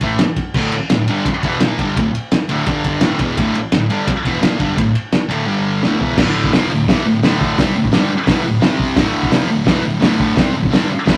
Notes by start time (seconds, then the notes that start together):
0.01 A2 E3 A3, kick, ride
0.19 snare, ride
0.36 kick, ride
0.54 D2 A2 D3, kick, crash
0.72 muted distorted electric guitar stroke, ride
0.90 D2 A2, snare, ride
1.08 G2 D3 G3, ride
1.26 muted distorted electric guitar stroke, kick, ride
1.43 E2 B2 E3, kick, ride
1.60 A#2 F3 A#3, snare, ride
1.79 G2 D3 G3, kick, ride
1.96 D2 A2, kick, ride
2.15 ride
2.32 snare, ride
2.49 D2 A2 D3, ride
2.66 G2 D3 G3, kick, ride
2.84 kick, ride
3.01 D2 A2 D3, snare, ride
3.19 E2 B2 E3, kick, ride
3.37 D2 A2 D3, kick, ride
3.55 muted distorted electric guitar stroke, ride
3.72 D2 A2, snare, ride
3.90 G2 D3 G3, ride
4.07 muted distorted electric guitar stroke, kick, ride
4.25 E2 B2 E3, kick, ride
4.41 A#2 F3 A#3, snare, ride
4.59 G2 D3 G3, kick, ride
4.77 D2 A2, kick, ride
4.95 ride
5.12 snare, ride
5.29 D2 A2 D3, ride
5.46 G2 D3 G3
5.83 D2 A2 D3, snare
6.00 E2 B2 E3, floor tom
6.17 D2 A2 D3, kick, snare, crash
6.44 kick
6.53 F2 C3 F3, snare, open hi-hat
6.71 D2 A2
6.88 E2 B2 E3, kick, snare, open hi-hat
7.06 D2 A2
7.23 D2 A2 D3, snare, open hi-hat
7.41 kick
7.58 C3 G3 C4, kick, snare, open hi-hat
7.76 D2 A2
7.84 kick
7.92 G2 D3 G3, snare, open hi-hat
8.10 muted distorted electric guitar stroke
8.27 E2 B2 E3, kick, snare, open hi-hat
8.44 D2 A2
8.61 C3 G3 C4, snare, open hi-hat
8.80 kick
8.96 D2 A2 D3, kick, snare, open hi-hat
9.23 kick
9.31 F2 C3 F3, snare, open hi-hat
9.50 D2 A2
9.66 E2 B2 E3, kick, snare, open hi-hat
9.83 D2 A2
10.00 D2 A2 D3, snare, open hi-hat
10.20 kick
10.36 C3 G3 C4, kick, snare, open hi-hat
10.54 D2 A2
10.64 kick
10.71 G2 D3 G3, snare, open hi-hat
10.90 muted distorted electric guitar stroke
11.06 A2 E3 A3, kick, snare, open hi-hat